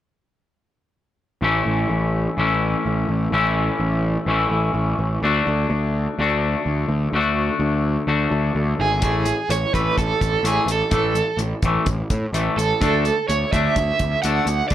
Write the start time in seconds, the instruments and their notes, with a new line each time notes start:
1.41 picked electric bass A1, distorted electric guitar A2 E3 A3 C#4 E4
1.66 picked electric bass A1
1.90 picked electric bass A1
2.37 picked electric bass A1, distorted electric guitar A2 E3 A3 C#4 E4
2.86 picked electric bass A1
3.09 picked electric bass A1
3.32 picked electric bass A1, distorted electric guitar A2 E3 A3 C#4 E4
3.79 picked electric bass A1
4.26 picked electric bass A1, distorted electric guitar A2 E3 A3 C#4 E4
4.50 picked electric bass A1
4.74 picked electric bass A1
4.99 picked electric bass A1
5.22 picked electric bass D2, distorted electric guitar D3 A3 D4 F#4
5.47 picked electric bass D2
5.70 picked electric bass D2
6.19 picked electric bass D2, distorted electric guitar D3 A3 D4 F#4
6.66 picked electric bass D2
6.89 picked electric bass D2
7.13 picked electric bass D2, distorted electric guitar D3 A3 D4 F#4
7.59 picked electric bass D2
8.07 picked electric bass D2, distorted electric guitar D3 A3 D4 F#4
8.31 picked electric bass D2
8.55 picked electric bass D2
8.79 picked electric bass G#1, overdriven electric guitar G#4
9.02 picked electric bass A1, distorted electric guitar A2 E3 A3, kick, closed hi-hat
9.26 distorted electric guitar A2 E3, closed hi-hat
9.49 picked electric bass A1, distorted electric guitar A2 E3, overdriven electric guitar C#5, closed hi-hat
9.73 picked electric bass A1, distorted electric guitar A2 E3 A3, overdriven electric guitar B4, kick, closed hi-hat
9.97 picked electric bass A1, distorted electric guitar A2 E3, overdriven electric guitar A4, kick, closed hi-hat
10.20 picked electric bass A1, distorted electric guitar A2 E3, kick, closed hi-hat
10.43 picked electric bass A1, distorted electric guitar A2 E3 A3, closed hi-hat
10.48 overdriven electric guitar G#4
10.66 picked electric bass A1, distorted electric guitar A2 E3, closed hi-hat
10.72 overdriven electric guitar A4
10.90 picked electric bass A1, distorted electric guitar A2 E3 A3, kick, closed hi-hat
11.14 distorted electric guitar A2 E3, closed hi-hat
11.37 picked electric bass A1, distorted electric guitar A2 E3, closed hi-hat
11.62 picked electric bass A1, distorted electric guitar A2 E3 A3, kick, closed hi-hat
11.86 picked electric bass A1, distorted electric guitar A2 E3, kick, closed hi-hat
12.10 picked electric bass A2, distorted electric guitar A2 E3, kick, closed hi-hat
12.33 picked electric bass A1, distorted electric guitar A2 E3 A3, closed hi-hat
12.57 picked electric bass A1, distorted electric guitar A2 E3, overdriven electric guitar A4, closed hi-hat
12.81 picked electric bass D2, distorted electric guitar D3 A3 D4, kick, closed hi-hat
13.05 distorted electric guitar D3 A3, closed hi-hat
13.28 picked electric bass D2, distorted electric guitar D3 A3, overdriven electric guitar C#5, closed hi-hat
13.53 picked electric bass D2, distorted electric guitar D3 A3 D4, overdriven electric guitar E5, kick, closed hi-hat
13.76 picked electric bass D2, distorted electric guitar D3 A3, kick, closed hi-hat
13.99 picked electric bass D2, distorted electric guitar D3 A3, kick, closed hi-hat
14.22 picked electric bass D2, distorted electric guitar D3 A3 D4, overdriven electric guitar F#5, closed hi-hat
14.46 picked electric bass D2, distorted electric guitar D3 A3, closed hi-hat
14.68 picked electric bass D2, distorted electric guitar D3 D4, overdriven electric guitar D5, kick, closed hi-hat